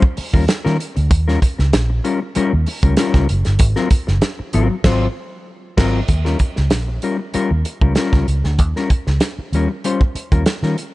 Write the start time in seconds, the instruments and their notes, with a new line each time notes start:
0.02 kick
0.17 muted clean electric guitar stroke, muted fingered electric bass stroke, open hi-hat
0.33 fingered electric bass D#2, clean electric guitar G3 C#4 F4 A#4, kick
0.48 snare, closed hi-hat
0.65 fingered electric bass D#3, clean electric guitar G3 C#4 F4 A#4, snare
0.79 muted clean electric guitar stroke, closed hi-hat
0.96 fingered electric bass D2, muted clean electric guitar stroke, closed hi-hat
1.10 fingered electric bass D#2, muted clean electric guitar stroke, kick, closed hi-hat
1.28 clean electric guitar G3 C#4 F4 A#4, snare
1.42 muted clean electric guitar stroke, kick, closed hi-hat
1.58 fingered electric bass C#2, muted clean electric guitar stroke, snare
1.73 fingered electric bass A#1, muted clean electric guitar stroke, snare, closed hi-hat
1.90 muted clean electric guitar stroke
2.04 clean electric guitar G3 C#4 F4 A#4, closed hi-hat
2.22 muted clean electric guitar stroke
2.35 clean electric guitar G3 C#4 F4 A#4, muted fingered electric bass stroke, closed hi-hat
2.53 fingered electric bass D#2
2.66 muted clean electric guitar stroke, open hi-hat
2.83 fingered electric bass C#2, clean electric guitar G3 C#4 F4 A#4, kick, closed hi-hat
2.97 clean electric guitar G3 C#4 F4 A#4, snare, closed hi-hat
3.14 fingered electric bass C#2, kick, snare
3.29 fingered electric bass F#1, muted clean electric guitar stroke, closed hi-hat
3.45 fingered electric bass G1, muted clean electric guitar stroke, snare, closed hi-hat
3.59 fingered electric bass G#1, muted clean electric guitar stroke, kick, closed hi-hat
3.76 clean electric guitar F#3 C4 F4 A#4, snare
3.90 kick, closed hi-hat
4.07 fingered electric bass F#1, muted clean electric guitar stroke, snare
4.21 muted clean electric guitar stroke, snare, closed hi-hat
4.39 muted clean electric guitar stroke, muted fingered electric bass stroke
4.53 fingered electric bass G#1, clean electric guitar F#3 C4 F4 A#4, closed hi-hat
4.70 muted clean electric guitar stroke
4.84 fingered electric bass G#1, clean electric guitar F#3 C4 F4 C5, kick, snare, crash
5.77 fingered electric bass G#1, clean electric guitar F#3 C4 F4 A#4, kick, snare, crash
6.08 fingered electric bass D#2, muted clean electric guitar stroke, kick, closed hi-hat
6.25 clean electric guitar G3 C#4 F4 A#4, snare
6.39 kick, closed hi-hat
6.56 fingered electric bass C#2, muted clean electric guitar stroke, snare
6.70 fingered electric bass A#1, muted clean electric guitar stroke, snare, closed hi-hat
6.88 muted clean electric guitar stroke
7.02 clean electric guitar G3 C#4 F4 A#4, closed hi-hat
7.19 muted clean electric guitar stroke
7.34 clean electric guitar G3 C#4 F4 A#4, muted fingered electric bass stroke, closed hi-hat
7.51 fingered electric bass D#2
7.65 muted clean electric guitar stroke, closed hi-hat
7.81 fingered electric bass C#2, clean electric guitar G3 C#4 F4 A#4, kick
7.95 clean electric guitar G3 C#4 F4 A#4, snare, closed hi-hat
8.13 fingered electric bass C#2, kick, snare
8.28 fingered electric bass C#2, muted clean electric guitar stroke, closed hi-hat
8.44 fingered electric bass D2, muted clean electric guitar stroke, snare
8.59 fingered electric bass D#2, muted clean electric guitar stroke, kick, closed hi-hat
8.76 clean electric guitar G3 C#4 F4 A#4, snare
8.90 muted clean electric guitar stroke, kick, closed hi-hat
9.07 fingered electric bass C#2, muted clean electric guitar stroke, snare
9.20 muted clean electric guitar stroke, snare, closed hi-hat
9.39 muted fingered electric bass stroke, muted clean electric guitar stroke
9.52 fingered electric bass D#2, clean electric guitar G3 C#4 F4 A#4, closed hi-hat
9.71 muted clean electric guitar stroke
9.84 clean electric guitar G3 C#4 F4 C5, closed hi-hat
10.01 kick
10.15 muted fingered electric bass stroke, muted clean electric guitar stroke, closed hi-hat
10.32 fingered electric bass D#2, clean electric guitar G3 C#4 F4 A#4, kick, closed hi-hat
10.46 muted clean electric guitar stroke, snare, closed hi-hat
10.63 fingered electric bass D#3, clean electric guitar G3 C#4 F4 A#4, snare
10.78 closed hi-hat